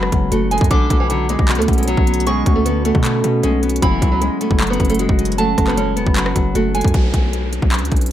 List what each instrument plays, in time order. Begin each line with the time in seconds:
Already playing: 808-style bass F#1, ambient pad C#3 F#3 G#3 F#4, harp F#3 G#3 B3 C#4 F#4, nylon-string guitar B3
0.03 cross-stick
0.12 808-style bass F#1, harp F#3, kick, closed hi-hat
0.32 808-style bass F#1, nylon-string guitar A3, harp F#4, closed hi-hat
0.51 nylon-string guitar G#3, harp C#4, synth bell G#5, closed hi-hat
0.58 808-style bass F#2, kick, closed hi-hat
0.64 closed hi-hat
0.71 808-style bass B1, harp B2, nylon-string guitar D3, ambient pad D3 B3 C#4 F#4, synth bell D6, kick, closed hi-hat
0.90 808-style bass B1, harp B2, kick, closed hi-hat
1.00 nylon-string guitar E3
1.10 harp D3, nylon-string guitar F#3, closed hi-hat
1.29 nylon-string guitar G#3, harp B3, closed hi-hat
1.39 808-style bass B1, kick
1.48 harp B2, clap, closed hi-hat
1.55 808-style bass D2, nylon-string guitar A3, closed hi-hat
1.62 closed hi-hat
1.68 808-style bass B1, harp B2, kick, closed hi-hat
1.73 closed hi-hat
1.78 nylon-string guitar G#3, closed hi-hat
1.83 closed hi-hat
1.88 nylon-string guitar F#3, harp C#4, closed hi-hat
1.97 808-style bass B1, kick
2.07 harp B3, closed hi-hat
2.14 closed hi-hat
2.20 closed hi-hat
2.27 harp B2, nylon-string guitar G#3, synth bell C#6, closed hi-hat
2.46 808-style bass D2, harp B2, kick, closed hi-hat
2.56 nylon-string guitar A3
2.65 harp D3, nylon-string guitar B3, closed hi-hat
2.85 nylon-string guitar A3, harp B3, closed hi-hat
2.95 808-style bass B2, kick
3.04 harp B2, clap, closed hi-hat
3.24 harp B2, 808-style bass B2, closed hi-hat
3.43 808-style bass B1, nylon-string guitar G#3, harp C#4, closed hi-hat
3.63 harp B3, closed hi-hat, open hi-hat
3.69 closed hi-hat
3.76 closed hi-hat
3.82 808-style bass F#1, nylon-string guitar E3, harp F#3, ambient pad F#3 G#3 F#4, synth bell B5, kick, closed hi-hat
4.02 808-style bass C#2, harp F#3, kick, closed hi-hat
4.12 nylon-string guitar F#3
4.21 harp G#3, nylon-string guitar G#3, closed hi-hat
4.41 nylon-string guitar A3, harp C#4, closed hi-hat
4.51 808-style bass F#1, kick
4.60 harp F#3, clap, closed hi-hat
4.67 nylon-string guitar B3, closed hi-hat
4.73 closed hi-hat
4.80 808-style bass F#1, harp F#3, kick, closed hi-hat
4.85 closed hi-hat
4.90 nylon-string guitar A3, closed hi-hat
4.94 closed hi-hat
4.99 nylon-string guitar G#3, harp F#4, closed hi-hat
5.09 808-style bass F#1, kick
5.19 harp C#4, closed hi-hat
5.25 closed hi-hat
5.32 closed hi-hat
5.38 harp F#3, nylon-string guitar A3, synth bell A5, closed hi-hat
5.58 808-style bass F#1, harp F#3, kick, cross-stick, closed hi-hat
5.67 nylon-string guitar B3, clap
5.77 harp G#3, nylon-string guitar C#4, closed hi-hat
5.96 808-style bass E1, nylon-string guitar B3, harp C#4, closed hi-hat
6.07 808-style bass F#1, kick
6.16 harp F#3, clap, closed hi-hat
6.26 cross-stick
6.36 808-style bass F#1, harp F#3, kick, closed hi-hat
6.55 808-style bass F#1, nylon-string guitar A3, harp F#4, closed hi-hat
6.75 nylon-string guitar G#3, harp C#4, synth bell G#5, closed hi-hat
6.81 808-style bass F#2, kick, closed hi-hat
6.88 closed hi-hat
6.94 808-style bass B1, ambient pad F#3 C#4 D4 B4, kick, closed hi-hat, downlifter
7.14 808-style bass B1, kick, closed hi-hat
7.33 closed hi-hat
7.53 closed hi-hat
7.62 808-style bass B1, kick
7.72 clap, closed hi-hat
7.79 808-style bass D2, closed hi-hat
7.85 closed hi-hat
7.92 808-style bass B1, kick, closed hi-hat
7.96 closed hi-hat
8.01 closed hi-hat
8.06 closed hi-hat